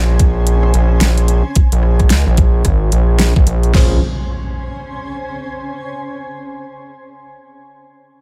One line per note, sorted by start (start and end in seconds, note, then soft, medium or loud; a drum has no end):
0.00 0.73 A#1 loud
0.00 3.72 C#4 medium
0.00 3.74 C5 medium
0.00 3.75 G#5 medium
0.19 kick loud
0.19 closed hi-hat medium
0.47 closed hi-hat medium
0.63 cross-stick soft
0.74 1.00 A#1 loud
0.74 closed hi-hat medium
1.01 1.43 A#1 loud
1.01 snare loud
1.01 closed hi-hat medium
1.18 closed hi-hat medium
1.28 closed hi-hat medium
1.55 kick loud
1.55 closed hi-hat medium
1.72 2.09 A#1 medium
1.72 closed hi-hat medium
1.83 cross-stick soft
1.99 kick medium
1.99 cross-stick soft
1.99 closed hi-hat soft
2.10 2.24 C#2 medium
2.10 snare loud
2.10 closed hi-hat medium
2.27 2.63 A#1 medium
2.37 kick loud
2.37 closed hi-hat medium
2.65 2.91 G#1 medium
2.65 kick medium
2.65 cross-stick soft
2.65 closed hi-hat medium
2.92 3.34 A#1 loud
2.92 closed hi-hat medium
3.19 snare loud
3.19 closed hi-hat medium
3.36 3.45 A#1 loud
3.36 kick loud
3.47 3.73 A#1 loud
3.47 closed hi-hat medium
3.63 closed hi-hat soft
3.74 4.00 A#1 loud
3.74 5.88 C#4 medium
3.74 3.96 C#4 medium
3.74 3.96 F4 medium
3.74 3.96 G#4 medium
3.74 3.96 C5 medium
3.74 kick loud
3.74 snare loud
3.74 crash medium
3.74 impact medium
3.84 5.88 C5 medium
3.93 5.89 G#5 medium